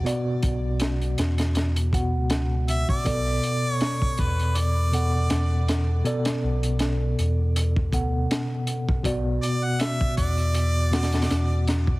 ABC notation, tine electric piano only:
X:1
M:4/4
L:1/8
Q:"Swing 16ths" 1/4=80
K:Bm
V:1 name="Tine electric piano"
[B,,B,Fd]4- [B,,B,Fd] [B,,B,Ff]3 | [B,,B,Ad]4- [B,,B,Ad] [B,,B,Af]3 | [B,,B,Ad]4- [B,,B,Ad] [B,,B,Af]3 | [B,,B,Fd]4- [B,,B,Fd] [B,,B,Ff]3 |]